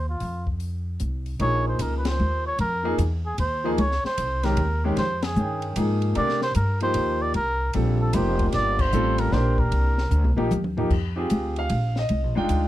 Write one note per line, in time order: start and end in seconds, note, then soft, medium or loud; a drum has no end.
0.00 0.18 D#2 medium
0.09 0.45 F4 medium
0.20 0.96 F2 medium
0.20 open hi-hat soft
0.47 kick soft
0.60 open hi-hat soft
1.00 1.37 C2 medium
1.00 closed hi-hat soft
1.26 open hi-hat soft
1.39 1.78 A#1 medium
1.39 2.51 F3 soft
1.39 2.51 A#3 soft
1.39 2.51 D#4 soft
1.39 2.51 G#4 medium
1.39 1.65 C#5 loud
1.39 ride soft
1.68 1.83 C5 medium
1.79 2.18 C#2 medium
1.79 1.97 A#4 medium
1.79 hi-hat pedal soft
1.79 ride medium
1.98 2.09 B4 medium
2.05 2.46 C5 loud
2.05 snare medium
2.05 ride medium
2.20 2.58 D#2 medium
2.46 2.59 C#5 medium
2.59 2.97 F2 medium
2.59 2.97 A#4 loud
2.59 ride medium
2.83 2.97 F3 medium
2.83 2.97 A#3 medium
2.83 2.97 D#4 medium
2.83 2.97 G#4 medium
2.98 3.37 E2 medium
2.98 hi-hat pedal medium
2.98 ride medium
3.26 3.38 G#4 medium
3.38 3.77 D#2 medium
3.38 3.70 C5 medium
3.38 ride medium
3.64 3.77 F3 medium
3.64 3.77 A#3 medium
3.64 3.77 D#4 medium
3.64 3.77 G#4 medium
3.78 4.02 C#2 medium
3.78 4.03 C#5 medium
3.78 ride medium
3.92 snare soft
4.04 4.46 C5 medium
4.04 muted upright bass stroke soft
4.04 snare soft
4.18 4.56 C2 medium
4.18 hi-hat pedal medium
4.18 ride medium
4.43 4.56 D#3 medium
4.43 4.56 G#3 medium
4.43 4.56 C#4 medium
4.43 4.57 G4 medium
4.43 4.84 A#4 medium
4.43 snare soft
4.43 ride soft
4.57 4.96 D#2 loud
4.57 ride medium
4.84 4.96 D#3 medium
4.84 4.96 G#3 medium
4.84 4.97 C#4 medium
4.84 4.97 G4 medium
4.97 5.35 F2 medium
4.97 5.25 C5 medium
4.97 snare soft
4.97 ride medium
5.22 5.72 G#4 medium
5.22 snare medium
5.22 ride medium
5.36 5.75 G2 medium
5.36 5.75 D#3 medium
5.36 5.76 C#4 medium
5.36 5.75 G#4 medium
5.36 5.76 G5 medium
5.36 hi-hat pedal soft
5.62 ride soft
5.76 6.15 G#2 medium
5.76 6.16 F3 medium
5.76 6.16 A#3 medium
5.76 6.16 D#4 medium
5.76 6.17 G#4 medium
5.76 hi-hat pedal medium
5.76 ride medium
6.02 ride soft
6.15 6.55 C3 medium
6.15 6.39 A3 medium
6.15 6.39 D4 medium
6.15 6.40 G4 medium
6.15 6.40 A#4 medium
6.15 6.41 D5 loud
6.15 ride medium
6.29 snare soft
6.41 6.55 C5 loud
6.41 snare soft
6.55 6.94 G2 medium
6.55 6.80 A#4 medium
6.55 hi-hat pedal medium
6.55 ride medium
6.80 7.32 F3 medium
6.80 7.32 A#3 medium
6.80 7.33 D#4 medium
6.80 7.33 G4 medium
6.80 7.23 C5 loud
6.80 ride soft
6.94 7.33 D#2 medium
6.94 ride medium
7.22 7.35 D5 medium
7.34 7.73 C2 medium
7.34 7.72 A#4 loud
7.34 ride soft
7.73 8.13 A#1 medium
7.73 8.13 G3 medium
7.73 8.13 C4 medium
7.73 8.13 F4 medium
7.73 8.13 A4 medium
7.73 ride medium
8.01 8.16 A4 medium
8.13 8.52 F1 loud
8.13 8.74 F3 medium
8.13 8.75 A#3 medium
8.13 8.75 D#4 soft
8.13 8.75 G4 medium
8.13 8.47 C5 medium
8.13 hi-hat pedal medium
8.13 ride medium
8.39 kick soft
8.39 ride soft
8.52 8.92 G1 medium
8.52 8.82 D5 loud
8.52 snare soft
8.52 ride medium
8.79 9.21 C5 medium
8.79 kick medium
8.79 crash medium
8.92 9.31 A1 loud
8.92 9.31 G3 medium
8.92 9.31 C4 medium
8.92 9.32 F4 medium
8.92 9.32 A4 medium
8.92 hi-hat pedal medium
9.18 9.35 A#4 medium
9.18 ride medium
9.32 9.71 A#1 medium
9.32 9.93 A#3 medium
9.32 9.93 D4 medium
9.32 9.93 G4 medium
9.32 9.94 A#4 medium
9.32 9.61 C5 medium
9.32 snare soft
9.58 10.38 A#4 medium
9.58 kick medium
9.71 10.10 C2 medium
9.71 ride medium
9.98 snare soft
10.11 10.25 D2 medium
10.11 hi-hat pedal medium
10.24 10.37 C2 medium
10.24 high tom medium
10.36 10.50 A#1 medium
10.36 10.49 F3 medium
10.36 10.50 A#3 medium
10.36 10.50 D#4 medium
10.36 10.50 G4 medium
10.36 high tom medium
10.51 10.90 D#2 medium
10.51 hi-hat pedal medium
10.51 mid tom medium
10.64 mid tom medium
10.77 10.89 F3 medium
10.77 10.90 A#3 medium
10.77 10.90 D#4 medium
10.77 10.90 G4 medium
10.77 floor tom medium
10.90 11.29 F2 medium
10.90 kick medium
10.90 crash medium
11.16 11.67 C4 medium
11.16 11.67 F4 medium
11.16 11.67 G4 medium
11.16 11.68 G#4 medium
11.30 11.69 D2 medium
11.30 hi-hat pedal medium
11.30 ride medium
11.56 11.95 F5 medium
11.56 ride soft
11.70 12.08 A#1 medium
11.70 ride medium
11.96 12.34 D#5 medium
11.96 snare soft
12.09 12.23 C2 medium
12.09 ride medium
12.23 12.36 A#1 medium
12.35 12.49 F1 medium
12.35 12.68 G#3 medium
12.35 12.68 D4 medium
12.35 12.68 D#4 medium
12.35 12.68 F4 medium
12.35 12.68 G5 medium
12.49 12.68 D2 medium
12.49 hi-hat pedal soft
12.49 ride medium